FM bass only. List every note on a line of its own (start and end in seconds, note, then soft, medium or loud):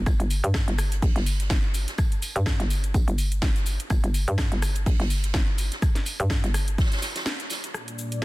0.06 0.18 G1 loud
0.20 0.42 G1 loud
0.44 0.66 G2 loud
0.68 1.01 G1 loud
1.02 1.14 A#1 medium
1.16 1.49 G1 loud
1.50 1.86 G1 loud
2.36 2.58 G2 loud
2.60 2.93 G1 medium
2.94 3.06 A#1 medium
3.08 3.41 G1 loud
3.42 3.78 G1 loud
3.90 4.02 G1 medium
4.04 4.26 G1 loud
4.28 4.50 G2 loud
4.52 4.85 G1 medium
4.86 4.98 A#1 loud
5.00 5.33 G1 loud
5.34 5.70 G1 loud
6.20 6.42 G2 loud
6.44 6.77 G1 medium